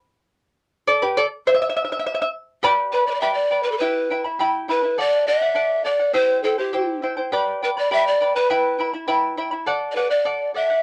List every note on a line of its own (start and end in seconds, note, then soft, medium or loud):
0.88 1.02 A4 medium
0.88 1.03 D5 medium
1.02 1.16 G4 medium
1.02 1.17 B4 medium
1.17 1.26 A4 medium
1.17 1.25 D5 medium
1.47 1.54 C5 medium
1.47 1.54 E5 medium
1.55 1.61 E5 medium
1.62 1.68 E5 medium
1.70 1.76 E5 medium
1.77 1.83 E5 medium
1.85 1.91 E5 soft
1.92 1.98 E5 medium
1.99 2.05 E5 soft
2.06 2.13 E5 medium
2.15 2.21 E5 medium
2.22 2.28 E5 medium
2.63 2.92 G4 medium
2.63 2.92 B4 loud
2.63 2.93 D5 medium
2.63 2.91 G5 medium
2.63 2.93 B5 loud
2.92 3.08 B4 medium
2.92 3.07 B4 medium
2.92 3.07 D5 medium
2.92 3.07 G5 soft
2.92 3.06 B5 medium
3.07 3.21 B4 soft
3.07 3.12 D5 medium
3.07 3.21 D5 soft
3.07 3.21 B5 soft
3.11 3.15 B4 medium
3.11 3.22 D5 medium
3.21 3.51 G4 medium
3.21 3.50 B4 medium
3.21 3.50 D5 medium
3.21 3.33 E5 medium
3.21 3.49 G5 medium
3.21 3.50 B5 medium
3.34 3.65 D5 loud
3.51 3.66 B4 medium
3.51 3.66 D5 medium
3.51 3.66 G5 medium
3.51 3.65 B5 medium
3.63 3.73 B4 medium
3.63 3.81 D5 soft
3.63 3.80 B5 soft
3.67 3.81 B4 soft
3.72 3.79 A4 medium
3.78 4.10 E4 medium
3.78 4.10 G4 medium
3.78 4.23 B4 medium
3.78 4.10 E5 medium
3.78 4.09 G5 medium
3.78 4.10 B5 medium
4.10 4.25 E4 medium
4.10 4.24 E5 medium
4.10 4.25 G5 medium
4.10 4.23 B5 medium
4.24 4.39 E4 soft
4.24 4.39 E5 medium
4.24 4.39 B5 soft
4.39 4.68 E4 medium
4.39 4.69 G4 medium
4.39 4.68 E5 medium
4.39 4.67 G5 medium
4.39 4.68 B5 medium
4.68 4.83 E4 medium
4.68 5.01 B4 medium
4.68 4.82 E5 medium
4.68 4.83 G5 medium
4.68 4.82 B5 medium
4.83 4.98 E4 soft
4.83 4.97 E5 soft
4.83 4.98 B5 soft
4.98 5.26 A4 medium
4.98 5.26 D5 medium
4.98 5.29 D5 loud
4.98 5.27 F#5 medium
5.27 5.42 A4 medium
5.27 5.42 D5 medium
5.27 5.87 E5 loud
5.27 5.40 F#5 medium
5.42 5.54 D5 soft
5.42 5.55 F#5 medium
5.55 5.83 A4 medium
5.55 5.85 D5 medium
5.55 5.85 F#5 medium
5.85 6.00 A4 medium
5.85 6.14 D5 loud
5.85 6.00 D5 medium
5.85 5.98 F#5 medium
6.00 6.14 D5 soft
6.00 6.14 F#5 medium
6.13 6.43 E4 medium
6.13 6.43 G4 medium
6.13 6.43 C5 loud
6.13 6.45 C5 loud
6.13 6.43 E5 medium
6.13 6.44 G5 medium
6.44 6.58 E4 medium
6.44 6.59 A4 medium
6.44 6.58 C5 medium
6.44 6.59 E5 medium
6.44 6.57 G5 medium
6.58 6.72 E4 soft
6.58 7.00 G4 medium
6.58 6.72 C5 soft
6.58 6.73 G5 soft
6.73 7.02 E4 medium
6.73 7.02 G4 medium
6.73 7.02 C5 medium
6.73 7.01 E5 medium
6.73 7.02 G5 medium
7.02 7.17 E4 medium
7.02 7.16 C5 medium
7.02 7.17 E5 medium
7.02 7.16 G5 medium
7.17 7.32 E4 soft
7.17 7.32 C5 soft
7.17 7.31 G5 soft
7.32 7.61 G4 medium
7.32 7.62 B4 loud
7.32 7.62 D5 loud
7.32 7.61 G5 loud
7.32 7.62 B5 loud
7.62 7.77 B4 medium
7.62 7.70 B4 medium
7.62 7.76 D5 medium
7.62 7.77 G5 medium
7.62 7.76 B5 medium
7.77 7.90 B4 soft
7.77 7.90 D5 soft
7.77 7.91 D5 medium
7.77 7.90 B5 soft
7.91 8.20 G4 medium
7.91 8.20 B4 medium
7.91 8.21 D5 medium
7.91 8.09 E5 loud
7.91 8.19 G5 medium
7.91 8.21 B5 medium
8.07 8.35 D5 loud
8.21 8.35 B4 medium
8.21 8.35 D5 medium
8.21 8.35 G5 medium
8.21 8.35 B5 medium
8.36 8.90 B4 medium
8.36 8.49 B4 soft
8.36 8.50 D5 soft
8.36 8.49 B5 soft
8.50 8.78 E4 medium
8.50 8.79 B4 medium
8.50 8.79 E5 medium
8.50 8.77 G5 medium
8.50 8.79 B5 medium
8.79 8.93 E4 medium
8.79 8.93 E5 medium
8.79 8.93 G5 medium
8.79 8.92 B5 medium
8.93 9.07 E4 soft
8.93 9.07 E5 soft
8.93 9.07 B5 soft
9.08 9.36 E4 medium
9.08 9.37 B4 medium
9.08 9.37 E5 medium
9.08 9.36 G5 medium
9.08 9.37 B5 medium
9.37 9.51 E4 medium
9.37 9.51 E5 medium
9.37 9.52 G5 medium
9.37 9.50 B5 medium
9.51 9.67 E4 soft
9.51 9.66 E5 soft
9.51 9.66 B5 medium
9.66 9.95 A4 medium
9.66 9.96 D5 medium
9.66 9.96 F#5 medium
9.92 9.97 D5 medium
9.96 10.11 A4 medium
9.96 10.10 B4 medium
9.96 10.11 D5 medium
9.96 10.09 F#5 medium
10.10 10.51 D5 medium
10.10 10.24 D5 soft
10.10 10.25 F#5 soft
10.25 10.53 A4 medium
10.25 10.54 D5 medium
10.25 10.55 F#5 medium
10.54 10.69 A4 medium
10.54 10.70 D5 medium
10.54 10.83 E5 medium
10.54 10.69 F#5 medium
10.70 10.83 D5 soft
10.70 10.83 F#5 soft